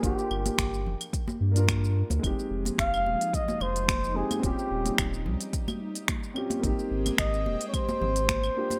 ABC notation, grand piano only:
X:1
M:4/4
L:1/16
Q:"Swing 16ths" 1/4=109
K:Ab
V:1 name="Grand piano"
[B,=DFG]8- [B,DFG]3 [B,DFB]4- [B,DFB] | [A,CEG]12- [A,CEG]2 [A,CEG] z | [CDFG]12- [CDFG]2 [CDFG] z | [B,CEG]12- [B,CEG]2 [B,=DFG] z |]